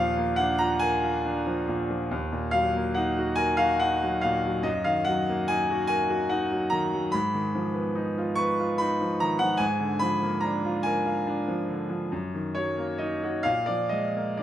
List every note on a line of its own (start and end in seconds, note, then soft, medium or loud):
0.00 2.04 D#2 medium
0.00 1.68 A#2 soft
0.00 0.31 F3 medium
0.00 2.13 D5 medium
0.00 0.38 F5 medium
0.17 0.51 A#3 soft
0.36 0.73 D4 medium
0.36 0.59 F#5 medium
0.59 0.95 F4 medium
0.59 0.81 A#5 medium
0.79 1.17 A#4 medium
0.79 2.09 G#5 medium
1.03 1.38 F4 medium
1.25 1.60 D4 medium
1.46 1.81 F3 soft
1.68 2.02 A#2 soft
1.90 2.11 F3 soft
2.11 4.61 D#2 medium
2.32 2.65 A#2 soft
2.51 2.86 F#3 soft
2.51 2.94 F5 medium
2.75 3.08 A#3 soft
2.94 3.29 D#4 medium
2.94 3.37 F#5 medium
3.19 3.51 F#4 medium
3.36 3.72 A#4 medium
3.36 3.58 G#5 loud
3.57 3.93 F#4 medium
3.57 3.79 F5 medium
3.80 4.15 D#4 soft
3.80 4.22 F#5 medium
4.03 4.36 F#3 soft
4.21 4.57 A#2 soft
4.21 4.64 F5 medium
4.45 4.65 F#3 soft
4.62 7.08 F#2 medium
4.62 4.85 D#5 medium
4.84 5.19 D#3 soft
4.84 5.06 F5 medium
5.05 5.40 F#3 soft
5.05 5.47 F#5 medium
5.29 5.61 A#3 medium
5.48 5.82 D#4 medium
5.48 5.86 G#5 medium
5.70 6.02 F#4 medium
5.87 6.22 A#4 medium
5.87 6.29 G#5 loud
6.10 6.43 F#4 medium
6.29 6.64 D#4 medium
6.29 6.71 F#5 medium
6.52 6.85 F#3 soft
6.70 7.05 D#3 soft
6.70 7.12 A#5 medium
6.94 7.14 F#3 soft
7.12 9.57 G#2 medium
7.12 8.37 B5 medium
7.34 7.67 D#3 soft
7.55 7.88 F3 medium
7.74 8.08 B3 soft
7.95 8.29 D#4 medium
8.18 8.51 F4 medium
8.35 8.71 B4 medium
8.35 8.78 C#6 loud
8.60 8.92 F4 medium
8.78 9.13 D#4 soft
8.78 9.20 B5 medium
9.01 9.33 F3 soft
9.20 9.53 D#3 soft
9.20 9.40 A#5 medium
9.39 9.61 F3 soft
9.39 9.60 F#5 medium
9.57 12.06 G#2 medium
9.57 9.99 G#5 medium
9.80 10.13 D3 soft
9.99 10.34 F3 soft
9.99 10.42 B5 medium
10.22 10.55 A#3 soft
10.41 10.76 D4 medium
10.41 10.83 A#5 medium
10.65 10.97 F4 medium
10.83 11.18 A#4 medium
10.83 11.25 G#5 medium
11.05 11.38 F4 medium
11.27 11.60 D4 soft
11.48 11.81 F3 soft
11.69 12.03 D3 soft
11.89 12.11 F3 soft
12.12 13.41 F#2 medium
12.34 12.69 D#3 soft
12.55 12.91 F#3 soft
12.55 12.99 C#5 medium
12.78 13.13 A#3 soft
12.98 13.36 D#4 soft
12.98 13.44 D#5 medium
13.24 13.45 F#4 soft
13.43 14.43 A#2 medium
13.43 13.67 F5 medium
13.66 14.06 F3 soft
13.66 13.90 D5 medium
13.89 14.30 G#3 soft
13.89 14.38 D#5 medium
14.16 14.43 A#3 soft
14.37 14.43 D4 soft
14.37 14.43 D5 medium